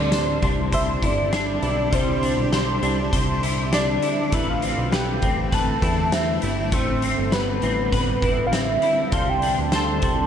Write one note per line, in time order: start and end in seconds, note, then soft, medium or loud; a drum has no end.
0.00 0.40 D2 medium
0.00 10.27 D3 medium
0.00 1.91 G3 medium
0.00 4.28 C4 medium
0.00 0.41 D4 soft
0.00 4.28 D4 medium
0.00 4.28 E4 medium
0.00 4.28 G4 medium
0.00 0.12 C5 medium
0.00 0.43 D5 loud
0.12 0.72 C5 medium
0.12 snare medium
0.12 closed hi-hat medium
0.42 1.00 C2 loud
0.42 1.31 D4 soft
0.42 kick medium
0.42 closed hi-hat soft
0.72 1.92 C5 medium
0.72 1.06 E5 loud
0.72 kick medium
0.72 closed hi-hat medium
1.03 1.60 G1 medium
1.03 1.62 E4 medium
1.03 1.96 D5 loud
1.03 kick medium
1.03 closed hi-hat soft
1.32 2.21 D4 medium
1.32 snare medium
1.32 closed hi-hat medium
1.62 1.91 B1 medium
1.62 3.42 E4 medium
1.62 closed hi-hat soft
1.92 2.35 C2 loud
1.92 4.32 G3 medium
1.92 2.52 C5 soft
1.92 3.13 C5 medium
1.92 kick medium
1.92 closed hi-hat medium
2.22 2.81 D4 medium
2.22 closed hi-hat soft
2.37 2.80 B1 medium
2.52 3.12 C5 medium
2.52 snare medium
2.52 closed hi-hat medium
2.82 3.11 C2 medium
2.82 3.72 D4 medium
2.82 closed hi-hat soft
3.12 3.99 C2 medium
3.12 4.33 C5 medium
3.12 kick medium
3.12 closed hi-hat medium
3.43 4.02 E4 medium
3.43 closed hi-hat soft
3.73 4.39 D4 medium
3.73 4.36 D5 medium
3.73 snare medium
3.73 closed hi-hat medium
4.02 5.82 E4 medium
4.02 closed hi-hat soft
4.32 4.75 A1 loud
4.32 6.71 A3 medium
4.32 9.09 C4 medium
4.32 4.91 B4 medium
4.32 4.50 E5 medium
4.32 kick loud
4.32 closed hi-hat medium
4.49 4.95 F5 medium
4.62 5.22 C4 medium
4.62 closed hi-hat soft
4.78 5.21 B1 medium
4.92 5.51 B4 medium
4.92 5.55 G5 medium
4.92 snare medium
4.92 closed hi-hat medium
5.22 5.80 A1 loud
5.22 6.12 C4 soft
5.22 kick medium
5.22 closed hi-hat soft
5.52 6.72 B4 medium
5.52 6.15 A5 loud
5.52 kick medium
5.52 closed hi-hat medium
5.82 6.40 E2 medium
5.82 6.42 E4 medium
5.82 kick medium
5.82 closed hi-hat soft
6.12 7.02 C4 medium
6.12 6.73 E5 medium
6.12 snare medium
6.12 closed hi-hat medium
6.42 6.71 G1 medium
6.42 8.22 E4 soft
6.42 closed hi-hat soft
6.72 7.15 A1 loud
6.72 9.10 G3 medium
6.72 9.12 A3 medium
6.72 7.36 C5 medium
6.72 kick loud
6.72 closed hi-hat medium
7.02 7.62 C4 medium
7.02 closed hi-hat soft
7.18 7.61 G1 medium
7.32 7.91 B4 medium
7.32 8.46 B4 medium
7.32 snare medium
7.32 closed hi-hat medium
7.62 7.91 A1 loud
7.62 8.52 C4 medium
7.62 closed hi-hat soft
7.92 8.78 A1 medium
7.92 9.12 B4 medium
7.92 kick medium
7.92 closed hi-hat medium
8.22 8.82 E4 soft
8.22 kick medium
8.22 closed hi-hat soft
8.47 8.56 F5 medium
8.52 9.42 C4 medium
8.52 9.16 E5 medium
8.52 snare medium
8.52 closed hi-hat medium
8.82 9.46 E4 medium
8.82 closed hi-hat soft
9.12 9.55 C2 loud
9.12 10.27 G3 medium
9.12 10.27 C4 medium
9.12 10.27 D4 medium
9.12 10.27 E4 medium
9.12 10.27 G4 medium
9.12 9.72 C5 medium
9.12 9.31 F5 loud
9.12 10.27 A5 medium
9.12 kick loud
9.12 closed hi-hat medium
9.29 9.73 G5 loud
9.42 10.01 D4 medium
9.42 closed hi-hat soft
9.58 10.01 D2 medium
9.72 10.27 C5 medium
9.72 10.27 A5 loud
9.72 snare medium
9.72 closed hi-hat medium
10.02 10.27 C2 medium
10.02 10.27 D4 soft
10.02 kick medium
10.02 closed hi-hat soft